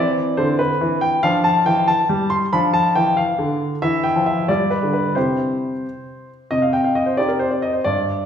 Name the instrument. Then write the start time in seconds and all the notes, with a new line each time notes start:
grand piano
Already playing: E3 C4 D5
0.37 D3 C5
0.59 B4
0.81 E3
1.01 G5
1.23 F3 D4 F5
1.44 A5
1.66 E3 G5
1.88 A5
2.09 G3
2.30 C6
2.53 F3 D4 B5
2.74 A5
2.95 E3 G5
3.17 F5
3.39 D3
3.82 E3 E4 E5
4.04 G5
4.16 F3
4.26 E5
4.48 G3 F4 D5
4.70 B4
4.83 D3
4.93 B4
5.15 C3 E4 G4 C5
6.51 C3 D#5
6.62 F5
6.73 G5
6.84 F5
6.95 D#5
7.06 C5
7.17 C4 D#4 G4 D5
7.29 A#4
7.39 C5
7.51 D5
7.62 D#5
7.73 C5
7.84 G2 D5